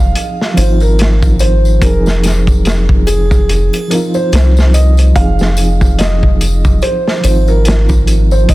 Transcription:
0.00 0.12 F1 medium
0.00 0.51 F3 medium
0.00 0.52 C4 medium
0.00 0.54 D#4 medium
0.00 0.55 G#4 medium
0.00 0.60 F5 loud
0.15 closed hi-hat medium
0.15 tambourine soft
0.41 snare soft
0.54 1.78 G#1 loud
0.54 1.76 F3 medium
0.54 1.77 C4 medium
0.54 0.81 C5 medium
0.54 closed hi-hat medium
0.54 tambourine medium
0.54 triangle medium
0.59 1.78 D#4 medium
0.59 1.80 F4 medium
0.80 1.42 A#4 medium
0.80 tambourine soft
0.99 snare loud
0.99 closed hi-hat medium
0.99 tambourine soft
1.23 kick medium
1.23 tambourine soft
1.39 1.83 C5 medium
1.39 closed hi-hat medium
1.39 tambourine medium
1.65 tambourine soft
1.79 3.45 F1 medium
1.79 3.84 F3 medium
1.79 3.86 C4 medium
1.79 3.11 A#4 loud
1.79 kick loud
1.79 closed hi-hat medium
1.79 tambourine medium
1.84 3.87 D#4 medium
1.84 3.88 G#4 medium
2.06 snare soft
2.06 tambourine soft
2.23 snare soft
2.23 closed hi-hat medium
2.23 tambourine medium
2.47 kick medium
2.47 tambourine soft
2.65 snare loud
2.65 closed hi-hat medium
2.65 tambourine soft
2.89 kick medium
3.07 3.93 G#4 medium
3.07 closed hi-hat medium
3.07 tambourine medium
3.07 triangle medium
3.31 kick medium
3.31 tambourine soft
3.49 3.70 F1 medium
3.49 closed hi-hat medium
3.49 tambourine soft
3.73 closed hi-hat soft
3.73 triangle medium
3.87 5.10 F3 medium
3.87 5.11 C4 medium
3.87 3.96 A#4 medium
3.87 closed hi-hat medium
3.87 tambourine medium
3.92 5.12 D#4 medium
3.92 5.13 F4 loud
4.14 4.76 C5 medium
4.14 tambourine soft
4.32 5.12 C2 medium
4.32 snare loud
4.32 closed hi-hat medium
4.32 tambourine soft
4.57 snare medium
4.57 tambourine soft
4.74 5.17 D#5 medium
4.74 closed hi-hat medium
4.74 tambourine medium
4.97 closed hi-hat soft
4.97 tambourine soft
5.13 6.79 F1 medium
5.13 7.18 F3 medium
5.13 7.19 C4 medium
5.13 6.01 F5 loud
5.13 kick loud
5.13 closed hi-hat medium
5.13 tambourine soft
5.18 7.20 D#4 medium
5.18 7.22 G#4 medium
5.39 snare medium
5.39 tambourine soft
5.57 closed hi-hat medium
5.57 tambourine medium
5.81 kick medium
5.81 tambourine soft
5.99 6.85 D#5 medium
5.99 snare loud
5.99 closed hi-hat medium
5.99 tambourine soft
6.23 kick medium
6.41 closed hi-hat medium
6.41 tambourine medium
6.65 kick medium
6.65 tambourine soft
6.82 7.21 C5 medium
6.82 closed hi-hat medium
6.82 tambourine soft
7.08 snare soft
7.21 8.45 G#1 medium
7.21 8.43 F3 medium
7.21 8.44 C4 medium
7.21 7.48 C5 medium
7.21 closed hi-hat medium
7.21 tambourine medium
7.21 triangle medium
7.26 8.45 D#4 medium
7.26 8.47 F4 medium
7.48 8.34 A#4 medium
7.48 tambourine soft
7.65 snare loud
7.65 closed hi-hat medium
7.65 tambourine soft
7.89 kick medium
7.89 tambourine soft
8.07 closed hi-hat medium
8.07 tambourine medium
8.31 8.48 C5 medium
8.31 tambourine soft
8.46 8.54 F1 medium
8.46 8.54 F3 medium
8.46 8.54 C4 medium
8.46 8.54 D#5 medium
8.46 kick loud
8.46 closed hi-hat medium
8.46 tambourine medium

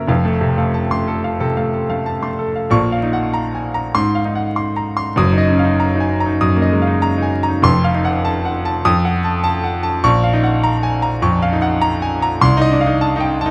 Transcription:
0.00 0.11 F#3 medium
0.00 0.11 A#3 medium
0.00 0.12 A#4 medium
0.00 0.12 E5 medium
0.00 0.11 A#5 medium
0.00 0.11 E6 loud
0.07 1.37 F1 medium
0.07 1.37 F2 medium
0.07 0.35 F5 medium
0.25 0.51 A3 medium
0.25 0.51 A4 medium
0.41 0.68 C3 medium
0.58 0.85 A3 medium
0.58 0.85 F5 medium
0.74 1.01 A5 medium
0.91 1.18 A3 medium
0.91 1.18 C6 medium
1.08 1.34 A4 medium
1.24 1.51 F5 medium
1.40 1.67 C3 medium
1.40 1.67 A4 medium
1.57 1.84 A3 medium
1.57 1.84 F5 medium
1.73 2.00 A4 medium
1.90 2.17 A3 medium
1.90 2.16 F5 medium
2.06 2.33 A5 medium
2.22 2.49 A3 medium
2.22 2.50 C6 medium
2.39 2.66 A4 medium
2.56 2.72 F5 medium
2.70 3.90 A#1 medium
2.70 3.91 A#2 medium
2.70 3.05 C#6 loud
2.92 3.26 F5 medium
3.03 3.19 D#4 medium
3.13 3.34 F#5 medium
3.34 3.66 A#5 medium
3.55 3.75 G#5 medium
3.74 3.95 A#5 medium
3.95 5.14 G#2 loud
3.95 4.27 C6 loud
4.15 4.48 F5 medium
4.25 4.41 D#4 medium
4.35 4.56 F#5 medium
4.56 4.89 C6 medium
4.76 4.97 A#5 medium
4.97 5.17 C6 medium
5.16 6.37 F#1 medium
5.16 6.37 F#2 loud
5.16 5.50 D#6 loud
5.33 5.58 D#4 medium
5.38 5.71 D#5 medium
5.48 5.64 C#4 medium
5.59 5.80 F5 medium
5.64 5.89 D#4 medium
5.80 6.13 A#5 medium
5.95 6.20 D#4 medium
6.00 6.21 G#5 medium
6.20 6.53 A#5 medium
6.26 6.51 D#4 medium
6.41 7.59 F#2 medium
6.41 6.74 D#6 loud
6.56 6.81 A#3 medium
6.62 6.94 D#5 medium
6.72 6.87 G#3 medium
6.82 7.02 F5 medium
6.87 7.11 D#4 medium
7.02 7.34 A#5 medium
7.18 7.42 D#4 medium
7.22 7.43 G#5 medium
7.43 7.63 A#5 medium
7.48 7.63 D#4 medium
7.62 8.80 F1 loud
7.62 8.81 F2 loud
7.62 7.96 C6 loud
7.84 8.17 F5 medium
7.94 8.09 D#4 medium
8.05 8.25 F#5 medium
8.25 8.56 A5 medium
8.45 8.65 F#5 medium
8.65 8.85 A5 medium
8.85 10.00 F2 loud
8.85 9.17 D#6 loud
9.05 9.36 F#5 medium
9.24 9.42 A5 medium
9.44 9.75 A5 loud
9.64 9.83 F#5 medium
9.83 10.03 A5 medium
10.04 11.19 A#1 loud
10.04 10.36 C#6 loud
10.24 10.55 F5 medium
10.33 10.48 D#4 medium
10.43 10.63 F#5 medium
10.63 10.95 A#5 loud
10.83 11.02 G#5 medium
11.02 11.34 A#5 medium
11.22 11.46 F2 loud
11.22 11.54 C#6 loud
11.42 11.74 F5 loud
11.53 11.67 D#4 medium
11.62 11.82 F#5 medium
11.82 12.14 A#5 loud
12.02 12.22 G#5 medium
12.22 12.42 A#5 loud
12.41 13.51 C2 loud
12.41 12.73 C6 loud
12.57 12.80 D#4 loud
12.61 12.93 D#5 loud
12.72 12.86 D4 medium
12.81 13.00 F5 medium
12.86 13.10 D#4 medium
13.01 13.32 A5 loud
13.16 13.39 D#4 medium
13.20 13.40 G5 medium
13.41 13.51 A5 loud
13.46 13.51 D#4 medium

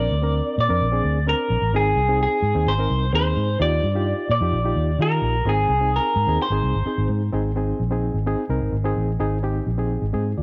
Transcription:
0.00 0.14 C4 medium
0.00 0.14 D4 medium
0.00 0.14 A#4 medium
0.00 0.55 D5 loud
0.11 0.40 D2 medium
0.22 0.57 C4 medium
0.22 0.57 D4 medium
0.22 0.57 A#4 medium
0.58 0.67 A#2 medium
0.58 1.29 D5 medium
0.69 0.79 F2 loud
0.69 0.86 C4 medium
0.69 0.86 D4 medium
0.69 0.87 A#4 medium
0.81 1.00 A#1 medium
0.92 1.18 C4 medium
0.92 1.18 D4 medium
0.92 1.18 G#4 medium
1.04 1.33 D2 medium
1.26 1.61 C4 medium
1.26 1.61 D4 medium
1.26 1.62 A#4 medium
1.26 1.76 A#4 medium
1.50 1.60 A#1 medium
1.62 1.72 A1 medium
1.73 1.92 G#1 loud
1.73 2.00 C4 medium
1.73 2.00 D#4 medium
1.73 2.00 G#4 medium
1.73 2.21 G#4 medium
1.96 2.25 C2 loud
2.09 2.43 C4 medium
2.09 2.43 D#4 medium
2.09 2.43 G#4 medium
2.23 2.69 G#4 loud
2.42 2.53 G#2 medium
2.55 2.65 D#2 medium
2.55 2.72 C4 medium
2.55 2.73 D#4 medium
2.55 2.73 G#4 medium
2.66 2.86 G#1 medium
2.66 3.14 C5 medium
2.78 3.04 C4 medium
2.78 3.05 D#4 medium
2.78 3.05 A#4 medium
2.90 3.09 C2 medium
3.13 3.32 D#2 loud
3.13 3.48 C4 medium
3.13 3.48 D#4 medium
3.13 3.48 G#4 medium
3.13 3.58 C5 medium
3.36 3.56 G#2 medium
3.60 3.79 D#2 loud
3.60 3.86 D#4 medium
3.60 3.86 F4 medium
3.60 3.86 G4 medium
3.60 4.30 D5 loud
3.83 4.12 G2 medium
3.95 4.29 D#4 medium
3.95 4.29 F4 medium
3.95 4.30 G4 medium
4.29 4.39 A#2 medium
4.29 5.02 D5 loud
4.41 4.51 F2 loud
4.41 4.59 D#4 medium
4.41 4.59 F4 medium
4.41 4.59 G4 medium
4.52 4.72 A#1 medium
4.64 4.90 D#4 medium
4.64 4.91 F4 medium
4.64 4.91 G4 medium
4.75 4.95 D#2 medium
4.99 5.19 D#3 loud
4.99 5.34 D#4 medium
4.99 5.34 F4 medium
4.99 5.35 G4 medium
4.99 5.49 A#4 medium
5.22 5.42 A#1 loud
5.45 5.65 G#1 loud
5.45 5.72 C4 medium
5.45 5.72 D#4 medium
5.45 5.72 G#4 medium
5.49 5.96 G#4 medium
5.68 5.98 C2 medium
5.80 6.15 C4 medium
5.80 6.16 D#4 medium
5.80 6.16 G#4 medium
5.96 6.38 A#4 medium
6.16 6.26 G#2 medium
6.27 6.37 D#2 medium
6.27 6.45 C4 medium
6.27 6.45 D#4 medium
6.27 6.46 G#4 medium
6.42 7.07 C5 medium
6.50 6.60 G#1 medium
6.50 6.77 C4 medium
6.50 6.77 D#4 medium
6.50 6.78 G#4 medium
6.62 6.72 C2 medium
6.74 6.84 G#1 medium
6.86 7.21 C4 medium
6.86 7.21 D#4 medium
6.86 7.21 G#4 medium
6.86 muted fingered electric bass stroke soft
6.98 7.08 G#1 medium
7.09 7.29 G#2 loud
7.33 7.72 G#1 loud
7.33 7.50 C4 medium
7.33 7.50 D#4 medium
7.33 7.51 G#4 medium
7.56 7.82 C4 medium
7.56 7.82 D#4 medium
7.56 7.83 G#4 medium
7.80 8.09 A#1 medium
7.91 8.17 C4 medium
7.91 8.17 D#4 medium
7.91 8.18 G#4 medium
8.14 8.34 G#1 medium
8.26 8.44 C4 medium
8.26 8.44 D#4 medium
8.26 8.44 G#4 loud
8.49 8.59 C2 medium
8.49 8.76 C4 medium
8.49 8.76 D#4 medium
8.49 8.76 A#4 medium
8.61 8.71 G#1 medium
8.72 8.92 G#1 loud
8.84 9.11 C4 medium
8.84 9.11 D#4 medium
8.84 9.11 G#4 loud
8.96 9.16 A1 medium
9.19 9.59 G#1 loud
9.19 9.37 C4 medium
9.19 9.37 D#4 medium
9.19 9.38 G#4 loud
9.43 9.69 C4 medium
9.43 9.69 D#4 medium
9.43 9.70 G4 medium
9.67 9.96 A#1 medium
9.78 10.04 C4 medium
9.78 10.04 D#4 medium
9.78 10.05 G#4 medium
10.02 10.12 G#1 medium
10.13 10.33 G#2 medium
10.13 10.31 C4 medium
10.13 10.31 D#4 medium
10.13 10.31 G#4 loud
10.38 10.43 D#2 medium
10.38 10.43 F4 soft
10.38 10.43 D5 medium

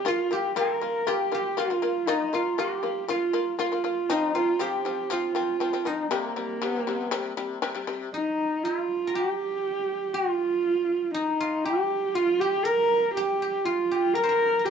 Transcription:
0.00 0.32 G4 medium
0.00 0.16 A#4 medium
0.05 0.26 A#3 medium
0.05 0.26 F4 loud
0.05 1.59 F4 medium
0.05 0.35 F4 medium
0.31 0.52 A#3 medium
0.31 0.52 F4 medium
0.31 1.08 G4 medium
0.31 0.58 G4 medium
0.56 0.77 A#3 medium
0.56 0.77 F4 medium
0.56 2.69 A#4 medium
0.56 1.10 A#4 medium
0.81 1.02 A#3 medium
0.81 1.02 F4 medium
1.07 1.27 A#3 medium
1.07 1.28 F4 loud
1.07 1.34 G4 medium
1.07 1.60 G4 medium
1.32 1.53 A#3 medium
1.32 1.53 F4 medium
1.32 2.59 G4 medium
1.57 1.68 A#3 medium
1.57 1.68 F4 medium
1.57 2.09 F4 medium
1.57 2.34 F4 medium
1.70 1.81 A#3 medium
1.70 1.81 F4 medium
1.82 2.03 A#3 medium
1.82 2.03 F4 medium
2.07 2.28 A#3 loud
2.07 2.36 D#4 medium
2.07 4.09 D#4 medium
2.07 2.29 F4 medium
2.33 2.54 A#3 medium
2.33 2.54 F4 medium
2.33 3.10 F4 medium
2.33 2.61 F4 medium
2.58 2.79 A#3 medium
2.58 2.79 F4 loud
2.58 4.61 G4 medium
2.58 3.10 G4 medium
2.83 3.04 A#3 medium
2.83 3.04 F4 medium
3.08 3.29 A#3 medium
3.08 3.30 F4 medium
3.08 3.59 F4 medium
3.08 3.57 F4 medium
3.33 3.54 A#3 medium
3.33 3.55 F4 medium
3.59 3.70 A#3 medium
3.59 4.34 F4 medium
3.59 3.70 F4 medium
3.59 4.13 F4 medium
3.72 3.83 A#3 medium
3.72 3.83 F4 medium
3.84 4.05 A#3 medium
3.84 4.05 F4 medium
4.10 4.30 F3 medium
4.10 4.30 C4 medium
4.10 5.86 D#4 medium
4.10 4.36 D#4 medium
4.35 4.56 F3 medium
4.35 4.56 C4 medium
4.35 5.12 F4 medium
4.35 4.63 F4 medium
4.59 4.81 F3 medium
4.59 4.81 C4 medium
4.59 6.96 G4 medium
4.59 5.14 G4 medium
4.85 5.06 F3 medium
4.85 5.06 C4 medium
5.10 5.31 F3 loud
5.10 5.31 C4 medium
5.10 7.64 F4 medium
5.10 5.90 F4 medium
5.35 5.56 F3 medium
5.35 5.56 C4 medium
5.60 5.71 F3 medium
5.60 5.72 C4 medium
5.73 5.84 F3 medium
5.73 5.84 C4 medium
5.85 6.07 F3 medium
5.85 6.07 C4 medium
5.85 8.14 D#4 medium
5.85 6.13 D#4 medium
6.11 6.32 C3 loud
6.11 6.32 G3 loud
6.11 9.33 A#3 medium
6.11 6.66 A#3 medium
6.36 6.57 C3 medium
6.36 6.57 G3 medium
6.62 6.83 C3 loud
6.62 6.83 G3 medium
6.66 6.80 B3 medium
6.80 6.95 A#3 medium
6.87 7.08 C3 medium
6.87 7.08 G3 medium
6.95 7.09 B3 medium
7.09 7.32 C3 loud
7.09 7.33 G3 loud
7.09 7.60 A#3 medium
7.37 7.58 C3 medium
7.37 7.58 G3 medium
7.62 7.73 C3 loud
7.62 7.73 G3 loud
7.75 7.86 C3 medium
7.75 7.86 G3 medium
7.87 8.08 C3 medium
7.87 8.08 G3 medium
8.13 8.65 D#4 medium
8.13 10.84 D#4 medium
8.63 9.16 F4 medium
8.63 10.14 F4 medium
9.07 11.19 A#4 medium
9.14 10.15 G4 medium
9.14 11.50 G4 medium
10.14 11.14 F4 medium
10.14 11.40 F4 medium
11.14 11.66 D#4 medium
11.14 13.85 D#4 medium
11.40 12.15 F4 medium
11.65 12.16 G4 medium
11.65 12.41 G4 medium
12.15 12.42 F4 loud
12.15 13.65 F4 medium
12.40 12.66 G4 loud
12.40 13.17 G4 medium
12.65 13.14 A#4 loud
12.65 14.15 A#4 loud
13.15 13.66 G4 loud
13.15 13.42 G4 medium
13.42 13.91 G4 medium
13.65 14.16 F4 loud
13.65 14.70 F4 medium
13.91 14.65 G4 medium
14.14 14.66 A#4 loud
14.14 14.29 A#4 medium
14.24 14.70 C5 medium
14.29 14.59 A#4 medium
14.59 14.70 A#4 medium
14.65 14.70 G4 medium

